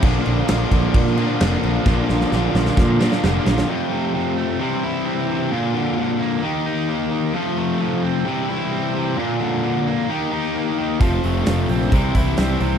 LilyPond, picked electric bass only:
\new Staff \with { instrumentName = "Picked electric bass" } { \clef bass \time 4/4 \key bes \lydian \tempo 4 = 131 bes,,8 bes,,8 bes,,8 bes,,8 bes,4 f,,8 bes,,8 | bes,,8 bes,,8 bes,,8 bes,,8 bes,4 f,,8 bes,,8 | r1 | r1 |
r1 | r1 | f,,8 f,,8 f,,8 bes,,8 c,8 c,8 c,8 c,8 | }